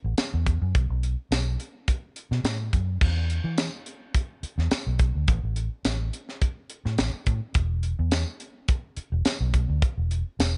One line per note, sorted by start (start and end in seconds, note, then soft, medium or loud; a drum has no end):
0.04 0.16 A1 medium
0.18 snare loud
0.18 closed hi-hat medium
0.18 tambourine loud
0.34 0.57 E2 medium
0.46 kick medium
0.46 closed hi-hat medium
0.62 0.73 F#2 medium
0.75 0.88 B1 medium
0.75 kick loud
0.75 closed hi-hat medium
0.90 1.14 B1 medium
1.03 closed hi-hat medium
1.31 1.55 B1 medium
1.31 snare loud
1.31 closed hi-hat medium
1.31 tambourine loud
1.60 closed hi-hat medium
1.88 kick medium
1.88 closed hi-hat medium
2.16 closed hi-hat medium
2.31 2.42 B2 medium
2.31 snare soft
2.44 2.70 A2 medium
2.44 snare loud
2.44 closed hi-hat medium
2.44 tambourine loud
2.73 2.99 F#2 medium
2.73 kick medium
2.73 closed hi-hat medium
3.01 3.38 E2 medium
3.01 kick loud
3.01 crash loud
3.30 closed hi-hat medium
3.44 3.68 E3 medium
3.58 snare loud
3.58 closed hi-hat medium
3.58 tambourine loud
3.86 closed hi-hat medium
4.14 kick medium
4.14 closed hi-hat medium
4.43 muted fingered electric bass stroke soft
4.43 closed hi-hat medium
4.58 4.69 E2 medium
4.58 snare soft
4.71 muted fingered electric bass stroke soft
4.71 snare loud
4.71 closed hi-hat medium
4.71 tambourine loud
4.87 5.11 B1 medium
4.99 kick medium
4.99 closed hi-hat medium
5.15 5.26 D2 medium
5.28 5.41 A1 loud
5.28 kick loud
5.28 closed hi-hat medium
5.43 5.67 A1 medium
5.56 closed hi-hat medium
5.85 6.09 A1 medium
5.85 snare loud
5.85 closed hi-hat medium
5.85 tambourine loud
6.13 closed hi-hat medium
6.29 snare soft
6.42 kick medium
6.42 closed hi-hat medium
6.70 closed hi-hat medium
6.85 6.97 A2 medium
6.85 snare soft
6.98 7.11 A1 medium
6.98 snare loud
6.98 closed hi-hat medium
6.98 tambourine loud
7.13 muted fingered electric bass stroke soft
7.26 7.39 A2 medium
7.26 kick medium
7.26 closed hi-hat medium
7.54 7.92 E1 medium
7.54 kick loud
7.54 closed hi-hat medium
7.83 closed hi-hat medium
7.99 8.23 E2 medium
8.11 snare loud
8.11 closed hi-hat medium
8.11 tambourine loud
8.40 closed hi-hat medium
8.68 kick medium
8.68 closed hi-hat medium
8.97 muted fingered electric bass stroke soft
8.97 closed hi-hat medium
9.12 9.23 E1 medium
9.25 snare loud
9.25 closed hi-hat medium
9.25 tambourine loud
9.40 9.65 B1 loud
9.54 kick medium
9.54 closed hi-hat medium
9.69 9.80 D2 medium
9.82 kick loud
9.82 closed hi-hat medium
9.97 10.22 E1 medium
10.11 closed hi-hat medium
10.39 10.57 E1 medium
10.39 snare loud
10.39 closed hi-hat medium
10.39 tambourine loud